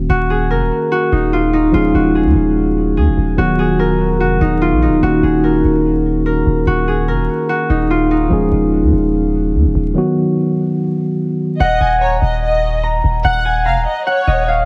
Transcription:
Already playing: D#3 A#3 C#4 F#4
0.10 D#1 F#4
0.30 G#4
0.51 F1 A#4
0.61 D#1
0.92 F#4
1.12 D#1 D#4
1.33 F4
1.53 D#4
1.72 D#1 F3 G#3 C#4 F4 G#4
1.94 D#1 F#4
2.15 G#4
2.25 D#2
2.35 D#1
2.97 D#2 G#4
3.07 D#1
3.18 D#1
3.37 D#1 D#3 F#3 B3 F#4
3.59 G#4
3.79 A#4
4.20 F1 F#4
4.41 D#1 D#4
4.62 F4
4.72 A#1
4.82 D#4
4.87 D#1
5.01 D#1 D#3 A#3 C#4 F#4
5.23 D#1 G#4
5.44 A#4
5.64 D#1
6.26 A#4
6.46 D#1
6.67 D#1 F#4
6.88 G#4
7.08 F1 A#4
7.18 D#1
7.49 F#4
7.70 D#1 D#4
7.90 F4
8.11 D#4
8.29 D#1 F3 G#3 C#4 G#4
8.52 D#1
8.83 D#2
8.93 D#1
9.55 D#2
9.65 D#1
9.75 D#1
9.94 D#3 F#3 B3 F#4
11.60 D#1 D#5 F#5
11.81 D#1 G#5
12.01 C#5 A#5
12.22 D#1 D#5
12.42 D#5
12.83 A#5
13.04 D#1
13.25 D#1 F#5
13.45 G#5
13.66 F1 F5 A#5
13.76 D#1
13.86 D#5
14.07 C#5 F#5
14.27 D#1 D#5
14.48 F5

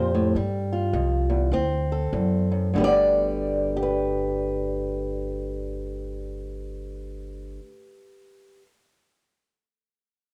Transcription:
Already playing: F2 A#2 G4 C5
0.15 A2
0.35 G2 G3
0.73 F4
0.93 C2 F2
1.30 E2
1.51 D2 C4
1.92 A4
2.13 E2 F#2
2.52 F#2
2.74 G1 D2 D3 G3
2.80 B3 D5
3.77 G4
3.83 B4

